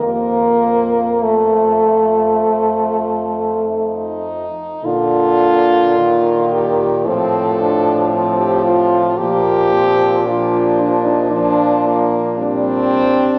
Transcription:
X:1
M:4/4
L:1/16
Q:1/4=55
K:Bb
V:1 name="French horn"
c4 c8 E4 | F6 G2 A4- A G F2 | G4 F2 D E D3 z C4 |]
V:2 name="French horn"
F4 F8- F2 z2 | z8 C2 D2 C4 | B,2 C2 D4 F2 B,2 D4 |]
V:3 name="French horn" clef=bass
B,4 A,8- A,2 z2 | D,4 E,4 F,8 | F,4 F,4 F,3 z G,4 |]
V:4 name="French horn" clef=bass
F,,12- F,,2 z2 | B,,8 A,,8 | B,,12- B,,3 z |]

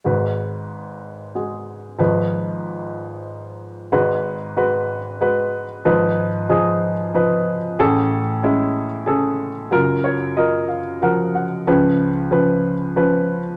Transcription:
X:1
M:3/4
L:1/8
Q:1/4=93
K:G#dor
V:1 name="Grand piano"
[G,FB]4 [G,FG]2 | [E,DB]6 | [G,FB] z [G,FB] z [G,FB] z | [E,DB] z [E,DG] z [E,DB] z |
[CG=A] z [G,C=E] z [CGA] z | [F,EA] c [F,EAd] e [E,F,Af] f | [E,CB] z [E,CB] z [E,CB] z |]
V:2 name="Grand piano" clef=bass
[G,,,G,,]6 | [G,,,G,,]6 | [G,,,G,,]6 | [G,,,G,,]6 |
[=A,,,=A,,]6 | [F,,,F,,]6 | [C,,C,]6 |]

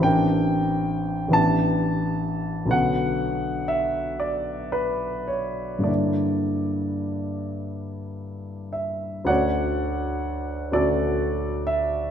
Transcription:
X:1
M:6/8
L:1/8
Q:3/8=40
K:D
V:1 name="Grand piano"
g3 a2 z | f2 e d B c | d4- d e | [cdf]3 [FAd]2 e |]
V:2 name="Grand piano"
[A,,,E,=CD_B]3 [A,,,E,=B,DG]3 | [B,,,D,B,CF]6 | [G,,D,_B,DE]6 | [D,,D,A,CF]3 [D,,D,A,C]3 |]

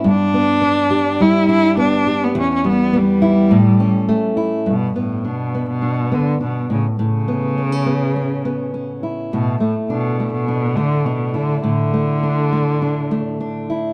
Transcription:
X:1
M:4/4
L:1/16
Q:1/4=103
K:Glyd
V:1 name="Steel-string acoustic guitar"
G,,2 B,2 D2 G2 G,2 D2 B,2 G2 | E,,2 G,2 B,2 E2 A,,2 C2 A,2 E2 | G,,2 B,2 D2 B,2 D2 B,2 D2 A,,2 | A,,2 B,2 B, C B,2 C2 B,2 C2 E2 |
A,,2 A,2 D2 A,2 D2 A,2 D2 E2 | A,,2 A,2 D2 A,2 D2 A,2 D2 E2 |]
V:2 name="Cello" clef=bass
D8 E2 E2 D3 B, | C C B,2 G,8- G,2 z2 | B,,2 A,,2 B,,3 B,,3 D,2 B,,2 C,2 | C,12- C,2 z2 |
B,,2 A,,2 B,,3 B,,3 D,2 B,,2 D,2 | D,12- D,2 z2 |]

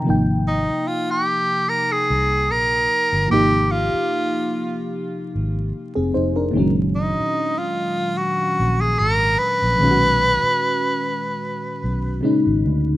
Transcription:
X:1
M:4/4
L:1/16
Q:"Swing 16ths" 1/4=74
K:Ablyd
V:1 name="Tenor saxophone"
z2 E2 F G3 B A3 B4 | G2 F6 z8 | z2 E3 F3 _G3 A B2 _c2- | _c12 z4 |]
V:2 name="FM electric piano"
z16 | z12 z [CA] [Ec] [DB]- | [DB] z12 z3 | z16 |]
V:3 name="FM electric piano" clef=bass
[C,F,B,Eg]16 | [C,F,B,EG]16 | [B,,E,_G,A,_D]16 | [^A,,^D,_A,^CF^F]12 [^A,,^C,_A,C^D]4 |]
V:4 name="Fingered electric bass" clef=bass
A,,,3 z6 z C,,2 B,,,2 z G,,, | A,,,3 z6 z A,,,2 z F,,, F,,,2 | _G,,,3 z6 z B,,,2 A,,,2 z B,,, | =B,,,3 z6 z B,,,2 z A,,, D,,2 |]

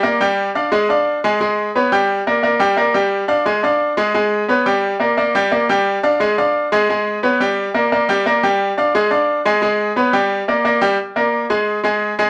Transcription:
X:1
M:4/4
L:1/8
Q:1/4=175
K:Gphr
V:1 name="Grand piano"
[B,Bd] [G,Gg]2 [Ddf] [A,Aa] [Ddf]2 [A,Aa] | [A,Aa]2 [_C_c_d] [G,Gg]2 [B,B=d] [B,Bd] [G,Gg] | [B,Bd] [G,Gg]2 [Ddf] [A,Aa] [Ddf]2 [A,Aa] | [A,Aa]2 [_C_c_d] [G,Gg]2 [B,B=d] [B,Bd] [G,Gg] |
[B,Bd] [G,Gg]2 [Ddf] [A,Aa] [Ddf]2 [A,Aa] | [A,Aa]2 [_C_c_d] [G,Gg]2 [B,B=d] [B,Bd] [G,Gg] | [B,Bd] [G,Gg]2 [Ddf] [A,Aa] [Ddf]2 [A,Aa] | [A,Aa]2 [_C_c_d] [G,Gg]2 [B,B=d] [B,Bd] [G,Gg] |
z [B,Bd]2 [A,Aa]2 [A,Aa]2 [A,Aa] |]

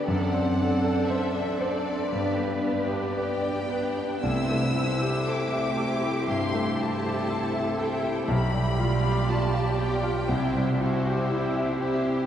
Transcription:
X:1
M:4/4
L:1/16
Q:1/4=59
K:G
V:1 name="Violin section"
f4 e2 d4 z2 g4 | e'4 d'4 c'2 a4 g2 | b4 a2 g4 z6 |]
V:2 name="Violin section"
[Ad]2 [Ad]4 [Ad]2 [Gd]2 [Gd]4 [Gd]2 | [Gc]2 [Gc]4 [Gc]4 [Gc]4 [Gc]2 | z2 [Gd]4 [Gd]2 [Gc]2 [Gc]4 [Gc]2 |]
V:3 name="Cello section"
A2 A6 B4 G2 D2 | E4 G8 A4 | G2 =F2 G4 E2 ^F2 E2 G2 |]
V:4 name="Grand piano"
F,, C D A c d c D G,, B, D G B d B D | C,, A, E G A e A E G,, A, E G A e A E | B,,, G, =F G F =f G F C,, G, E G E e G E |]
V:5 name="Viola section"
[CD]2 [CD]4 [CD]2 [B,D]2 [B,D]4 [B,D]2 | [A,E]2 [A,E]4 [A,E]4 [A,E]4 [A,E]2 | z2 [B,=F]4 [B,F]2 [CE]2 [CE]4 [CE]2 |]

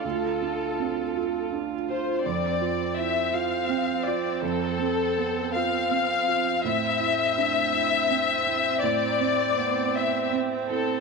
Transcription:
X:1
M:6/8
L:1/8
Q:3/8=55
K:Flyd
V:1 name="Violin section"
A4 z c | d2 e f2 d | A3 f3 | e6 |
d3 e z A |]
V:2 name="Felt piano"
[D,,F] D C F D F | F,, F E F C F | F,, C B, F C F | A,, E D E C E |
A,, C B, E C E |]
V:3 name="Viola"
F6 | C6- | C6 | C6- |
C6 |]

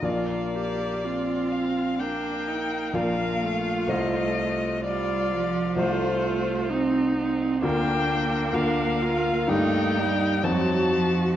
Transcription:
X:1
M:4/4
L:1/8
Q:1/4=63
K:Bb
V:1 name="Violin"
d3 f g2 f2 | e2 d2 c2 z2 | g2 f2 g2 a2 |]
V:2 name="Viola"
F G F2 D E F2- | F2 F2 F2 E2 | D2 D F E2 _G2 |]
V:3 name="Grand piano"
[B,,,B,Fd]6 [B,,,B,Fd]2 | [C,,A,Fc]4 [C,,A,Fc]4 | [D,,B,FB]2 [D,,B,FB]2 [G,,B,EG]2 [F,,CE_G]2 |]
V:4 name="Cello"
B,2 C2 B,2 B, A,- | A,2 G, F, A,2 C C | B,4 A, G, _G, F, |]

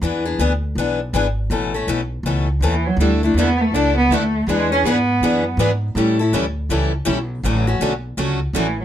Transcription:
X:1
M:4/4
L:1/16
Q:"Swing" 1/4=162
K:D
V:1 name="Steel-string acoustic guitar"
z16 | z16 | [D,A,DEA]2 z2 [D,A,DEA] z3 [D,A,DEA]2 z2 [D,A,DEA] z3 | [E,B,D^GB]2 z2 [E,B,DGB] z3 [E,B,DGB]2 z2 [E,B,DGB] z3 |
[E,G,CEA]2 z2 [E,G,CEA] z3 [E,G,CEA]2 z2 [E,G,CEA] z3 | [D,A,CFA]2 z2 [D,A,CFA] z3 [D,A,CFA]2 z2 [D,A,CFA] z3 |]
V:2 name="Steel-string acoustic guitar"
[E,B,D^G]2 [B,DG]2 [E,B,DG] z3 [E,B,DG]2 z2 [E,B,DG] z3 | [B,,E,A,CA]2 [A,CA]2 [B,,E,A,CA] z3 [B,,E,A,CA]2 z2 [B,,E,A,CA] z3 | [D,A,DEA]2 [DEA]2 [D,A,DEA] z3 [D,A,DEA]2 z2 [D,A,DEA] z3 | [E,B,D^G]2 [B,DG]2 [E,B,DG] z3 [E,B,DG]2 z2 [E,B,DG] z3 |
[E,G,CEA]2 [CEA]2 [E,G,CEA] z3 [E,G,CEA]2 z2 [E,G,CEA] z3 | [D,F,A,CF]2 [A,CF]2 [D,F,A,CF] z3 [D,F,A,CF]2 z2 [D,F,A,CF] z3 |]
V:3 name="Cello"
z16 | z8 z3 z/2 D,/2 E,2 F,2 | G,2 A,2 B,2 A,2 D2 B,2 A,4 | ^G,2 C2 B,8 z4 |
z16 | z12 E,2 F,2 |]
V:4 name="Upright bass" clef=bass
E,,4 D,,4 B,,,4 ^G,,,4 | A,,,4 B,,,4 C,,4 _E,,4 | D,,4 E,,4 C,,4 D,,4 | E,,4 ^G,,4 F,,4 G,,4 |
A,,4 D,,4 C,,4 B,,,4 | A,,,4 B,,,4 C,,4 A,,,4 |]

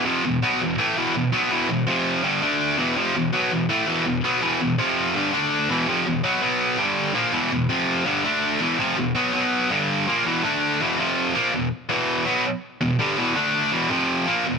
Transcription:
X:1
M:4/4
L:1/8
Q:1/4=165
K:Em
V:1 name="Distorted electric guitar" clef=bass
[=F,,C,=F,] [E,,B,,] [B,,^F,B,] [E,,B,,] [A,,E,A,] [E,,B,,E,] [E,,B,,] [B,,F,B,] | [E,,B,,E,] [E,,B,,] [=F,,C,=F,]2 [G,,D,G,] [D,A,D]2 [E,,B,,E,] | [=F,,C,=F,] [E,,B,,] [B,,^F,B,] [E,,B,,] [A,,E,A,] [E,,B,,E,] [E,,B,,] [B,,F,B,] | [E,,B,,E,] [E,,B,,] [=F,,C,=F,]2 [G,,D,G,] [D,A,D]2 [E,,B,,E,] |
[=F,,C,=F,] [E,,B,,] [B,,^F,B,] [B,,F,B,]2 [G,,D,G,]2 [^A,,=F,^A,] | [E,,B,,E,] [E,,B,,] [=F,,C,=F,]2 [G,,D,G,] [D,A,D]2 [E,,B,,E,] | [=F,,C,=F,] [E,,B,,] [B,,^F,B,] [B,,F,B,]2 [G,,D,G,]2 [^A,,^E,^A,] | [E,,B,,E,] [D,A,D]2 [E,,B,,E,] [=F,,C,=F,]2 [^A,,F,^A,] [E,,B,,] |
z [E,,B,,E,]2 [B,,F,B,] z2 [E,,B,,] [G,,D,G,] | [E,,B,,E,] [D,A,D]2 [E,,B,,E,] [=F,,C,=F,]2 [^A,,F,^A,] [E,,B,,] |]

